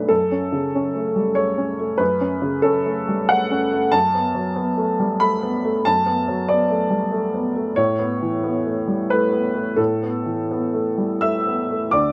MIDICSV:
0, 0, Header, 1, 2, 480
1, 0, Start_track
1, 0, Tempo, 641026
1, 73, Time_signature, 3, 2, 24, 8
1, 6313, Tempo, 674916
1, 7273, Tempo, 706714
1, 8863, End_track
2, 0, Start_track
2, 0, Title_t, "Upright piano"
2, 0, Program_c, 0, 0
2, 0, Control_c, 0, 64, 127
2, 0, Note_on_c, 0, 35, 39
2, 0, Note_on_c, 0, 42, 31
2, 0, Note_on_c, 0, 55, 30
2, 0, Note_on_c, 0, 57, 33
2, 0, Note_on_c, 0, 62, 32
2, 0, Note_on_c, 0, 71, 57
2, 0, Note_on_c, 0, 74, 55
2, 64, Note_on_c, 0, 69, 67
2, 74, Note_off_c, 0, 42, 0
2, 74, Note_on_c, 0, 42, 40
2, 86, Control_c, 0, 64, 0
2, 88, Note_off_c, 0, 62, 0
2, 88, Note_off_c, 0, 71, 0
2, 90, Note_off_c, 0, 74, 0
2, 92, Note_off_c, 0, 35, 0
2, 93, Note_off_c, 0, 57, 0
2, 94, Note_off_c, 0, 55, 0
2, 220, Control_c, 0, 64, 127
2, 238, Note_on_c, 0, 61, 33
2, 392, Note_on_c, 0, 49, 32
2, 490, Note_off_c, 0, 61, 0
2, 564, Note_on_c, 0, 61, 36
2, 648, Note_off_c, 0, 49, 0
2, 708, Note_on_c, 0, 57, 35
2, 813, Note_off_c, 0, 61, 0
2, 868, Note_on_c, 0, 55, 30
2, 964, Note_off_c, 0, 57, 0
2, 1011, Note_on_c, 0, 73, 62
2, 1016, Note_on_c, 0, 57, 36
2, 1024, Note_off_c, 0, 69, 0
2, 1027, Note_off_c, 0, 55, 0
2, 1181, Note_on_c, 0, 61, 34
2, 1274, Note_off_c, 0, 57, 0
2, 1344, Note_on_c, 0, 57, 37
2, 1434, Note_off_c, 0, 61, 0
2, 1470, Note_off_c, 0, 42, 0
2, 1480, Note_on_c, 0, 71, 64
2, 1490, Note_off_c, 0, 73, 0
2, 1493, Note_on_c, 0, 42, 42
2, 1511, Control_c, 0, 64, 0
2, 1594, Note_off_c, 0, 57, 0
2, 1628, Control_c, 0, 64, 127
2, 1654, Note_on_c, 0, 61, 35
2, 1810, Note_on_c, 0, 49, 35
2, 1909, Note_off_c, 0, 61, 0
2, 1963, Note_on_c, 0, 69, 67
2, 1965, Note_off_c, 0, 71, 0
2, 1975, Note_on_c, 0, 61, 35
2, 2071, Note_off_c, 0, 49, 0
2, 2141, Note_on_c, 0, 57, 35
2, 2242, Note_off_c, 0, 61, 0
2, 2310, Note_on_c, 0, 55, 34
2, 2410, Note_off_c, 0, 57, 0
2, 2462, Note_on_c, 0, 78, 76
2, 2469, Note_off_c, 0, 69, 0
2, 2470, Note_on_c, 0, 57, 39
2, 2475, Note_off_c, 0, 55, 0
2, 2630, Note_on_c, 0, 61, 34
2, 2727, Note_off_c, 0, 57, 0
2, 2791, Note_on_c, 0, 57, 40
2, 2883, Note_off_c, 0, 61, 0
2, 2915, Note_off_c, 0, 42, 0
2, 2932, Note_on_c, 0, 81, 84
2, 2940, Note_on_c, 0, 42, 46
2, 2942, Note_off_c, 0, 78, 0
2, 2947, Note_off_c, 0, 57, 0
2, 2962, Control_c, 0, 64, 0
2, 3089, Control_c, 0, 64, 127
2, 3103, Note_on_c, 0, 59, 36
2, 3255, Note_on_c, 0, 54, 37
2, 3357, Note_off_c, 0, 59, 0
2, 3414, Note_on_c, 0, 59, 40
2, 3514, Note_off_c, 0, 54, 0
2, 3571, Note_on_c, 0, 57, 37
2, 3675, Note_off_c, 0, 59, 0
2, 3741, Note_on_c, 0, 55, 38
2, 3835, Note_off_c, 0, 57, 0
2, 3894, Note_on_c, 0, 83, 79
2, 3895, Note_on_c, 0, 57, 41
2, 3897, Note_off_c, 0, 81, 0
2, 3904, Note_off_c, 0, 55, 0
2, 4064, Note_on_c, 0, 59, 38
2, 4157, Note_off_c, 0, 57, 0
2, 4229, Note_on_c, 0, 57, 39
2, 4319, Note_off_c, 0, 59, 0
2, 4349, Note_off_c, 0, 42, 0
2, 4377, Note_off_c, 0, 83, 0
2, 4382, Note_on_c, 0, 81, 83
2, 4392, Note_on_c, 0, 42, 46
2, 4397, Control_c, 0, 64, 0
2, 4480, Note_off_c, 0, 57, 0
2, 4515, Control_c, 0, 64, 127
2, 4539, Note_on_c, 0, 59, 38
2, 4704, Note_on_c, 0, 54, 39
2, 4795, Note_off_c, 0, 59, 0
2, 4856, Note_on_c, 0, 74, 70
2, 4859, Note_off_c, 0, 81, 0
2, 4861, Note_on_c, 0, 59, 42
2, 4959, Note_off_c, 0, 54, 0
2, 5019, Note_on_c, 0, 57, 39
2, 5117, Note_off_c, 0, 59, 0
2, 5169, Note_on_c, 0, 55, 35
2, 5277, Note_off_c, 0, 57, 0
2, 5331, Note_on_c, 0, 57, 39
2, 5336, Note_off_c, 0, 55, 0
2, 5340, Note_off_c, 0, 74, 0
2, 5499, Note_on_c, 0, 59, 39
2, 5595, Note_off_c, 0, 57, 0
2, 5657, Note_on_c, 0, 57, 40
2, 5759, Note_off_c, 0, 59, 0
2, 5800, Note_off_c, 0, 42, 0
2, 5811, Note_on_c, 0, 73, 75
2, 5817, Note_on_c, 0, 45, 46
2, 5822, Note_off_c, 0, 57, 0
2, 5839, Control_c, 0, 64, 0
2, 5943, Control_c, 0, 64, 127
2, 5983, Note_on_c, 0, 59, 37
2, 6155, Note_on_c, 0, 52, 35
2, 6246, Note_off_c, 0, 59, 0
2, 6317, Note_on_c, 0, 59, 38
2, 6409, Note_off_c, 0, 52, 0
2, 6474, Note_on_c, 0, 57, 35
2, 6565, Note_off_c, 0, 59, 0
2, 6630, Note_on_c, 0, 55, 31
2, 6723, Note_off_c, 0, 57, 0
2, 6777, Note_off_c, 0, 73, 0
2, 6786, Note_off_c, 0, 55, 0
2, 6791, Note_on_c, 0, 71, 69
2, 6796, Note_on_c, 0, 57, 34
2, 6948, Note_on_c, 0, 59, 34
2, 7048, Note_off_c, 0, 57, 0
2, 7106, Note_on_c, 0, 57, 34
2, 7208, Note_off_c, 0, 59, 0
2, 7241, Note_off_c, 0, 45, 0
2, 7261, Note_on_c, 0, 69, 58
2, 7266, Note_on_c, 0, 45, 38
2, 7277, Note_off_c, 0, 71, 0
2, 7289, Control_c, 0, 64, 0
2, 7369, Note_off_c, 0, 57, 0
2, 7425, Control_c, 0, 64, 127
2, 7442, Note_on_c, 0, 59, 32
2, 7597, Note_on_c, 0, 52, 30
2, 7693, Note_off_c, 0, 59, 0
2, 7768, Note_on_c, 0, 59, 33
2, 7852, Note_off_c, 0, 52, 0
2, 7922, Note_on_c, 0, 57, 31
2, 8024, Note_off_c, 0, 59, 0
2, 8085, Note_on_c, 0, 55, 29
2, 8186, Note_off_c, 0, 57, 0
2, 8242, Note_off_c, 0, 69, 0
2, 8244, Note_on_c, 0, 88, 65
2, 8249, Note_off_c, 0, 55, 0
2, 8249, Note_on_c, 0, 76, 54
2, 8250, Note_on_c, 0, 57, 32
2, 8414, Note_on_c, 0, 59, 31
2, 8506, Note_off_c, 0, 57, 0
2, 8579, Note_on_c, 0, 57, 31
2, 8663, Note_off_c, 0, 59, 0
2, 8691, Note_off_c, 0, 45, 0
2, 8695, Note_off_c, 0, 76, 0
2, 8719, Note_off_c, 0, 88, 0
2, 8722, Note_on_c, 0, 86, 70
2, 8727, Note_off_c, 0, 57, 0
2, 8732, Note_on_c, 0, 74, 53
2, 8733, Note_on_c, 0, 38, 42
2, 8735, Control_c, 0, 64, 0
2, 8863, Note_off_c, 0, 38, 0
2, 8863, Note_off_c, 0, 74, 0
2, 8863, Note_off_c, 0, 86, 0
2, 8863, End_track
0, 0, End_of_file